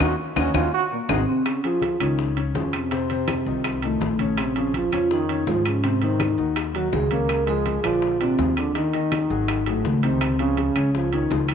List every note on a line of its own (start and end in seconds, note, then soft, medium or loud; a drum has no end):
0.00 0.14 D#2 medium
0.00 0.12 C#4 loud
0.00 0.12 D#4 loud
0.00 0.12 F#4 loud
0.00 0.18 F#4 medium
0.00 low bongo loud
0.00 high conga loud
0.00 high timbale loud
0.00 claves loud
0.18 0.34 A#3 medium
0.36 0.50 D#2 loud
0.36 0.48 C#4 loud
0.36 0.54 C#4 medium
0.36 0.48 D#4 loud
0.36 0.48 F#4 loud
0.36 low bongo medium
0.36 high conga medium
0.36 high timbale medium
0.36 claves loud
0.54 0.68 D#2 medium
0.54 0.66 C#4 medium
0.54 0.66 D#4 medium
0.54 0.72 F4 medium
0.54 0.66 F#4 medium
0.54 low bongo loud
0.54 high conga medium
0.54 high timbale medium
0.54 claves medium
0.74 0.85 F#4 loud
0.92 1.00 A#2 medium
0.92 1.01 A#3 medium
1.09 1.23 G#1 medium
1.09 1.27 C3 medium
1.09 1.28 C4 medium
1.09 1.21 D#4 medium
1.09 1.21 F#4 loud
1.09 1.21 G#4 medium
1.09 low bongo medium
1.09 high conga loud
1.09 high timbale loud
1.09 claves loud
1.28 1.45 C3 medium
1.28 1.45 C4 medium
1.46 1.63 C#3 medium
1.46 1.63 C#4 medium
1.46 high bongo medium
1.46 high conga soft
1.46 high timbale medium
1.46 claves medium
1.64 1.98 F3 medium
1.64 1.94 F3 medium
1.64 1.94 F4 medium
1.64 2.02 F4 medium
1.64 1.94 G#4 medium
1.64 high conga soft
1.64 high timbale medium
1.82 high bongo medium
1.82 high conga medium
1.82 high timbale medium
2.00 2.51 C#2 medium
2.00 2.30 C#3 medium
2.00 2.34 D#3 medium
2.00 2.30 C#4 medium
2.00 2.35 D#4 medium
2.00 2.31 C#5 medium
2.00 high bongo soft
2.00 high conga soft
2.00 high timbale medium
2.00 claves medium
2.18 high bongo medium
2.18 high conga soft
2.37 2.52 C#3 medium
2.37 2.52 C#4 medium
2.37 2.52 C#5 medium
2.37 high bongo soft
2.37 high conga soft
2.37 high timbale medium
2.55 3.40 F2 medium
2.55 2.72 C#3 medium
2.55 2.85 F3 medium
2.55 2.73 C#4 medium
2.55 2.85 F4 medium
2.55 2.85 G#4 medium
2.55 high bongo medium
2.55 low bongo medium
2.55 high conga medium
2.55 low timbale medium
2.73 3.79 C3 medium
2.73 3.79 C4 medium
2.73 high bongo soft
2.73 high conga soft
2.73 high timbale medium
2.73 claves medium
2.91 3.07 C3 medium
2.91 3.07 C4 medium
2.91 3.07 C5 medium
2.91 high bongo medium
2.91 high conga soft
2.91 high timbale medium
3.10 3.40 C3 medium
3.10 3.40 C4 medium
3.10 3.41 C5 medium
3.10 high bongo soft
3.10 high conga soft
3.10 high timbale medium
3.28 high bongo medium
3.28 high conga medium
3.28 high timbale medium
3.28 claves medium
3.46 3.97 C2 medium
3.46 3.77 D#3 medium
3.46 3.77 D#4 medium
3.46 3.77 F4 medium
3.46 high bongo soft
3.46 high conga soft
3.64 high bongo medium
3.64 high conga soft
3.64 high timbale medium
3.64 claves medium
3.82 4.34 A2 medium
3.82 4.13 D#3 medium
3.82 4.34 A3 medium
3.82 4.13 D#4 medium
3.82 4.13 F4 medium
3.82 high bongo soft
3.82 high conga soft
3.82 high timbale medium
4.01 4.86 A#1 medium
4.01 high bongo medium
4.01 low bongo medium
4.01 high conga medium
4.01 low timbale medium
4.19 4.50 C#3 medium
4.19 4.50 C#4 medium
4.19 4.50 C#5 medium
4.19 high conga medium
4.19 high timbale medium
4.37 4.55 C3 medium
4.37 4.57 C4 medium
4.37 high bongo medium
4.37 high conga soft
4.37 high timbale medium
4.37 claves medium
4.56 4.73 C#3 medium
4.56 4.86 F3 medium
4.56 4.73 C#4 medium
4.56 4.86 F4 medium
4.56 4.86 G#4 medium
4.56 high conga soft
4.56 high timbale medium
4.74 4.92 F3 medium
4.74 4.92 F4 medium
4.74 high bongo soft
4.74 high conga medium
4.74 high timbale medium
4.92 5.43 F2 medium
4.92 5.22 C#3 medium
4.92 5.10 F3 medium
4.92 5.23 C#4 medium
4.92 5.10 F4 medium
4.92 5.23 C#5 medium
4.92 high bongo soft
4.92 high conga soft
4.92 high timbale medium
4.92 claves medium
5.11 5.45 D#3 medium
5.11 5.45 D#4 medium
5.11 high bongo medium
5.11 high conga soft
5.29 5.44 C#3 medium
5.29 5.44 C#4 medium
5.29 5.44 C#5 medium
5.29 high bongo soft
5.29 high conga soft
5.29 high timbale medium
5.47 6.32 G#2 medium
5.47 5.77 F3 medium
5.47 5.64 F3 medium
5.47 5.77 F4 medium
5.47 5.66 F4 medium
5.47 5.77 G#4 medium
5.47 high bongo medium
5.47 low bongo medium
5.47 high conga medium
5.47 low timbale medium
5.65 5.82 C#3 medium
5.65 5.83 C#4 medium
5.65 high bongo soft
5.65 high conga soft
5.65 high timbale medium
5.65 claves medium
5.83 6.01 C3 medium
5.83 5.99 C3 medium
5.83 6.01 C4 loud
5.83 5.99 C4 medium
5.83 5.99 C5 medium
5.83 high bongo medium
5.83 high conga soft
5.83 high timbale medium
6.02 6.32 C3 medium
6.02 6.53 D#3 medium
6.02 6.32 C4 medium
6.02 6.53 D#4 medium
6.02 6.32 C5 medium
6.02 high bongo soft
6.02 high conga soft
6.02 high timbale medium
6.20 high bongo medium
6.20 high conga medium
6.20 high timbale medium
6.20 claves medium
6.38 6.89 D#2 medium
6.38 6.68 D#3 medium
6.38 6.68 D#4 medium
6.38 6.69 F#4 medium
6.38 high bongo soft
6.38 high conga soft
6.56 high bongo medium
6.56 high conga soft
6.56 high timbale medium
6.56 claves medium
6.74 7.05 D#3 medium
6.74 6.91 F#3 medium
6.74 7.05 D#4 medium
6.74 7.05 F#4 medium
6.74 6.92 F#4 medium
6.74 high bongo soft
6.74 high conga soft
6.74 high timbale medium
6.92 7.78 C#2 medium
6.92 7.09 G#3 medium
6.92 7.10 G#4 medium
6.92 high bongo medium
6.92 low bongo medium
6.92 high conga medium
6.92 low timbale medium
7.11 7.41 C#3 medium
7.11 7.45 A#3 medium
7.11 7.41 C#4 medium
7.11 7.49 A#4 loud
7.11 7.42 C#5 medium
7.11 high conga medium
7.11 high timbale medium
7.29 high bongo medium
7.29 high conga soft
7.29 high timbale medium
7.29 claves medium
7.47 7.78 F3 medium
7.47 7.81 G#3 medium
7.47 7.78 F4 medium
7.47 7.78 G#4 medium
7.47 7.86 G#4 medium
7.47 high conga soft
7.47 high timbale medium
7.66 high bongo soft
7.66 high conga medium
7.66 high timbale medium
7.83 8.35 A#1 medium
7.83 8.14 D3 medium
7.83 8.18 F3 medium
7.83 8.14 D4 medium
7.83 8.22 F4 medium
7.83 8.14 D5 medium
7.83 high bongo soft
7.83 high conga soft
7.83 high timbale medium
7.83 claves medium
8.02 high bongo medium
8.02 high conga soft
8.20 8.54 C3 medium
8.20 8.35 D3 medium
8.20 8.55 C4 medium
8.20 8.36 D4 medium
8.20 8.36 D5 medium
8.20 high bongo soft
8.20 high conga soft
8.20 high timbale medium
8.38 9.24 D#2 medium
8.38 8.69 F3 medium
8.38 8.69 F4 medium
8.38 8.69 G#4 medium
8.38 high bongo medium
8.38 low bongo medium
8.38 high conga medium
8.38 low timbale medium
8.57 8.74 D3 medium
8.57 8.75 D4 medium
8.57 high bongo soft
8.57 high conga soft
8.57 high timbale medium
8.57 claves medium
8.75 9.63 D#3 medium
8.75 8.91 D#3 medium
8.75 8.91 D#4 medium
8.75 9.70 D#4 medium
8.75 8.91 D#5 medium
8.75 high bongo medium
8.75 high conga soft
8.75 high timbale medium
8.93 9.24 D#3 medium
8.93 9.24 D#4 medium
8.93 9.24 D#5 medium
8.93 high bongo soft
8.93 high conga soft
8.93 high timbale medium
9.12 high bongo medium
9.12 high conga medium
9.12 high timbale medium
9.12 claves medium
9.30 9.81 G#1 medium
9.30 9.60 F#3 medium
9.30 9.60 F#4 medium
9.30 9.60 G#4 medium
9.30 high bongo soft
9.30 high conga soft
9.48 high bongo medium
9.48 high conga soft
9.48 high timbale medium
9.48 claves medium
9.66 10.01 A2 medium
9.66 9.96 F#3 medium
9.66 10.01 A3 medium
9.66 9.97 F#4 medium
9.66 9.97 G#4 medium
9.66 high bongo soft
9.66 high conga soft
9.66 high timbale medium
9.85 10.70 C#2 medium
9.85 high bongo medium
9.85 low bongo medium
9.85 high conga medium
10.03 10.37 C3 medium
10.03 10.33 D#3 medium
10.03 10.41 C4 medium
10.03 10.33 D#4 medium
10.03 10.33 C5 medium
10.03 high conga medium
10.03 high timbale medium
10.21 high bongo medium
10.21 high conga soft
10.21 high timbale medium
10.21 claves medium
10.39 10.90 C#3 medium
10.39 10.70 F3 medium
10.39 10.91 C#4 medium
10.39 10.70 F4 medium
10.39 10.70 G#4 medium
10.39 high conga soft
10.39 high timbale medium
10.57 high bongo medium
10.57 high conga medium
10.57 high timbale medium
10.76 11.27 C#2 medium
10.76 11.06 C#3 medium
10.76 11.06 C#4 medium
10.76 11.07 C#5 medium
10.76 high bongo soft
10.76 high conga soft
10.76 high timbale medium
10.76 claves medium
10.94 11.11 F3 medium
10.94 11.12 F4 medium
10.94 high bongo medium
10.94 high conga soft
11.12 11.28 C#3 medium
11.12 11.47 D#3 medium
11.12 11.28 C#4 medium
11.12 11.47 D#4 medium
11.12 11.28 C#5 medium
11.12 high bongo soft
11.12 high conga soft
11.12 high timbale medium
11.30 11.54 C#2 medium
11.30 11.54 F3 medium
11.30 11.54 F4 medium
11.30 11.54 G#4 medium
11.30 high bongo medium
11.30 low bongo medium
11.30 high conga medium
11.30 low timbale medium
11.48 11.54 D#3 medium
11.48 11.54 D#4 medium
11.48 high bongo soft
11.48 high conga soft
11.48 high timbale medium
11.48 claves medium